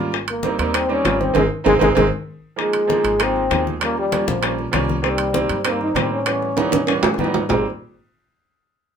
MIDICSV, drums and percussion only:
0, 0, Header, 1, 2, 480
1, 0, Start_track
1, 0, Key_signature, -4, "major"
1, 0, Tempo, 306748
1, 205, Time_signature, 4, 2, 24, 8
1, 14030, End_track
2, 0, Start_track
2, 0, Title_t, "Drums"
2, 192, Note_on_c, 9, 63, 30
2, 217, Note_on_c, 9, 60, 64
2, 348, Note_off_c, 9, 63, 0
2, 374, Note_off_c, 9, 60, 0
2, 435, Note_on_c, 9, 65, 80
2, 443, Note_on_c, 9, 63, 35
2, 591, Note_off_c, 9, 65, 0
2, 599, Note_off_c, 9, 63, 0
2, 672, Note_on_c, 9, 63, 78
2, 694, Note_on_c, 9, 60, 48
2, 829, Note_off_c, 9, 63, 0
2, 850, Note_off_c, 9, 60, 0
2, 928, Note_on_c, 9, 65, 73
2, 1084, Note_off_c, 9, 65, 0
2, 1162, Note_on_c, 9, 63, 31
2, 1162, Note_on_c, 9, 65, 98
2, 1172, Note_on_c, 9, 60, 69
2, 1318, Note_off_c, 9, 65, 0
2, 1319, Note_off_c, 9, 63, 0
2, 1329, Note_off_c, 9, 60, 0
2, 1403, Note_on_c, 9, 63, 34
2, 1559, Note_off_c, 9, 63, 0
2, 1640, Note_on_c, 9, 63, 78
2, 1646, Note_on_c, 9, 65, 68
2, 1646, Note_on_c, 9, 66, 68
2, 1649, Note_on_c, 9, 60, 69
2, 1649, Note_on_c, 9, 61, 78
2, 1796, Note_off_c, 9, 63, 0
2, 1802, Note_off_c, 9, 65, 0
2, 1802, Note_off_c, 9, 66, 0
2, 1805, Note_off_c, 9, 60, 0
2, 1805, Note_off_c, 9, 61, 0
2, 1889, Note_on_c, 9, 63, 70
2, 2046, Note_off_c, 9, 63, 0
2, 2110, Note_on_c, 9, 65, 105
2, 2122, Note_on_c, 9, 60, 86
2, 2123, Note_on_c, 9, 63, 88
2, 2266, Note_off_c, 9, 65, 0
2, 2278, Note_off_c, 9, 60, 0
2, 2280, Note_off_c, 9, 63, 0
2, 2599, Note_on_c, 9, 65, 93
2, 2601, Note_on_c, 9, 63, 95
2, 2602, Note_on_c, 9, 60, 87
2, 2756, Note_off_c, 9, 65, 0
2, 2757, Note_off_c, 9, 63, 0
2, 2758, Note_off_c, 9, 60, 0
2, 2837, Note_on_c, 9, 65, 96
2, 2842, Note_on_c, 9, 60, 88
2, 2851, Note_on_c, 9, 63, 94
2, 2994, Note_off_c, 9, 65, 0
2, 2998, Note_off_c, 9, 60, 0
2, 3008, Note_off_c, 9, 63, 0
2, 3077, Note_on_c, 9, 60, 91
2, 3079, Note_on_c, 9, 65, 87
2, 3088, Note_on_c, 9, 63, 92
2, 3234, Note_off_c, 9, 60, 0
2, 3235, Note_off_c, 9, 65, 0
2, 3245, Note_off_c, 9, 63, 0
2, 4048, Note_on_c, 9, 60, 56
2, 4058, Note_on_c, 9, 63, 29
2, 4204, Note_off_c, 9, 60, 0
2, 4215, Note_off_c, 9, 63, 0
2, 4278, Note_on_c, 9, 65, 80
2, 4292, Note_on_c, 9, 63, 29
2, 4435, Note_off_c, 9, 65, 0
2, 4448, Note_off_c, 9, 63, 0
2, 4533, Note_on_c, 9, 60, 51
2, 4534, Note_on_c, 9, 63, 81
2, 4689, Note_off_c, 9, 60, 0
2, 4691, Note_off_c, 9, 63, 0
2, 4767, Note_on_c, 9, 65, 75
2, 4923, Note_off_c, 9, 65, 0
2, 5004, Note_on_c, 9, 65, 94
2, 5017, Note_on_c, 9, 60, 65
2, 5023, Note_on_c, 9, 63, 34
2, 5160, Note_off_c, 9, 65, 0
2, 5174, Note_off_c, 9, 60, 0
2, 5180, Note_off_c, 9, 63, 0
2, 5261, Note_on_c, 9, 63, 32
2, 5418, Note_off_c, 9, 63, 0
2, 5492, Note_on_c, 9, 65, 63
2, 5495, Note_on_c, 9, 60, 66
2, 5495, Note_on_c, 9, 61, 78
2, 5502, Note_on_c, 9, 63, 79
2, 5649, Note_off_c, 9, 65, 0
2, 5651, Note_off_c, 9, 60, 0
2, 5651, Note_off_c, 9, 61, 0
2, 5659, Note_off_c, 9, 63, 0
2, 5744, Note_on_c, 9, 63, 68
2, 5901, Note_off_c, 9, 63, 0
2, 5964, Note_on_c, 9, 65, 90
2, 5981, Note_on_c, 9, 63, 33
2, 5988, Note_on_c, 9, 60, 56
2, 6121, Note_off_c, 9, 65, 0
2, 6137, Note_off_c, 9, 63, 0
2, 6144, Note_off_c, 9, 60, 0
2, 6217, Note_on_c, 9, 63, 33
2, 6223, Note_on_c, 9, 60, 31
2, 6374, Note_off_c, 9, 63, 0
2, 6379, Note_off_c, 9, 60, 0
2, 6451, Note_on_c, 9, 63, 87
2, 6458, Note_on_c, 9, 65, 68
2, 6465, Note_on_c, 9, 60, 49
2, 6608, Note_off_c, 9, 63, 0
2, 6614, Note_off_c, 9, 65, 0
2, 6621, Note_off_c, 9, 60, 0
2, 6696, Note_on_c, 9, 63, 96
2, 6852, Note_off_c, 9, 63, 0
2, 6926, Note_on_c, 9, 65, 83
2, 6938, Note_on_c, 9, 60, 65
2, 7082, Note_off_c, 9, 65, 0
2, 7095, Note_off_c, 9, 60, 0
2, 7174, Note_on_c, 9, 63, 32
2, 7180, Note_on_c, 9, 60, 34
2, 7330, Note_off_c, 9, 63, 0
2, 7337, Note_off_c, 9, 60, 0
2, 7401, Note_on_c, 9, 65, 87
2, 7414, Note_on_c, 9, 60, 67
2, 7414, Note_on_c, 9, 61, 74
2, 7417, Note_on_c, 9, 63, 84
2, 7557, Note_off_c, 9, 65, 0
2, 7571, Note_off_c, 9, 60, 0
2, 7571, Note_off_c, 9, 61, 0
2, 7573, Note_off_c, 9, 63, 0
2, 7655, Note_on_c, 9, 60, 34
2, 7660, Note_on_c, 9, 63, 72
2, 7811, Note_off_c, 9, 60, 0
2, 7816, Note_off_c, 9, 63, 0
2, 7884, Note_on_c, 9, 60, 68
2, 7892, Note_on_c, 9, 63, 30
2, 8041, Note_off_c, 9, 60, 0
2, 8048, Note_off_c, 9, 63, 0
2, 8108, Note_on_c, 9, 65, 86
2, 8136, Note_on_c, 9, 63, 30
2, 8265, Note_off_c, 9, 65, 0
2, 8292, Note_off_c, 9, 63, 0
2, 8360, Note_on_c, 9, 63, 86
2, 8366, Note_on_c, 9, 60, 56
2, 8516, Note_off_c, 9, 63, 0
2, 8522, Note_off_c, 9, 60, 0
2, 8598, Note_on_c, 9, 65, 71
2, 8755, Note_off_c, 9, 65, 0
2, 8834, Note_on_c, 9, 65, 96
2, 8846, Note_on_c, 9, 60, 61
2, 8850, Note_on_c, 9, 63, 32
2, 8991, Note_off_c, 9, 65, 0
2, 9002, Note_off_c, 9, 60, 0
2, 9007, Note_off_c, 9, 63, 0
2, 9089, Note_on_c, 9, 63, 33
2, 9245, Note_off_c, 9, 63, 0
2, 9326, Note_on_c, 9, 65, 67
2, 9326, Note_on_c, 9, 66, 70
2, 9327, Note_on_c, 9, 63, 84
2, 9333, Note_on_c, 9, 60, 73
2, 9333, Note_on_c, 9, 61, 79
2, 9483, Note_off_c, 9, 65, 0
2, 9483, Note_off_c, 9, 66, 0
2, 9484, Note_off_c, 9, 63, 0
2, 9489, Note_off_c, 9, 60, 0
2, 9489, Note_off_c, 9, 61, 0
2, 9796, Note_on_c, 9, 65, 91
2, 9807, Note_on_c, 9, 60, 59
2, 9952, Note_off_c, 9, 65, 0
2, 9963, Note_off_c, 9, 60, 0
2, 10052, Note_on_c, 9, 63, 30
2, 10053, Note_on_c, 9, 60, 31
2, 10208, Note_off_c, 9, 63, 0
2, 10209, Note_off_c, 9, 60, 0
2, 10277, Note_on_c, 9, 65, 72
2, 10286, Note_on_c, 9, 63, 76
2, 10290, Note_on_c, 9, 60, 52
2, 10433, Note_off_c, 9, 65, 0
2, 10442, Note_off_c, 9, 63, 0
2, 10446, Note_off_c, 9, 60, 0
2, 10517, Note_on_c, 9, 65, 86
2, 10529, Note_on_c, 9, 63, 91
2, 10674, Note_off_c, 9, 65, 0
2, 10685, Note_off_c, 9, 63, 0
2, 10753, Note_on_c, 9, 65, 66
2, 10772, Note_on_c, 9, 60, 64
2, 10775, Note_on_c, 9, 63, 33
2, 10909, Note_off_c, 9, 65, 0
2, 10928, Note_off_c, 9, 60, 0
2, 10932, Note_off_c, 9, 63, 0
2, 10997, Note_on_c, 9, 66, 96
2, 11012, Note_on_c, 9, 63, 30
2, 11019, Note_on_c, 9, 60, 87
2, 11154, Note_off_c, 9, 66, 0
2, 11169, Note_off_c, 9, 63, 0
2, 11173, Note_off_c, 9, 60, 0
2, 11173, Note_on_c, 9, 60, 61
2, 11248, Note_on_c, 9, 63, 79
2, 11330, Note_off_c, 9, 60, 0
2, 11331, Note_on_c, 9, 61, 92
2, 11404, Note_off_c, 9, 63, 0
2, 11488, Note_off_c, 9, 61, 0
2, 11489, Note_on_c, 9, 66, 97
2, 11490, Note_on_c, 9, 63, 73
2, 11495, Note_on_c, 9, 61, 84
2, 11645, Note_off_c, 9, 66, 0
2, 11647, Note_off_c, 9, 63, 0
2, 11651, Note_off_c, 9, 61, 0
2, 11722, Note_on_c, 9, 61, 86
2, 11732, Note_on_c, 9, 66, 90
2, 11734, Note_on_c, 9, 64, 91
2, 11879, Note_off_c, 9, 61, 0
2, 11889, Note_off_c, 9, 66, 0
2, 11891, Note_off_c, 9, 64, 0
2, 14030, End_track
0, 0, End_of_file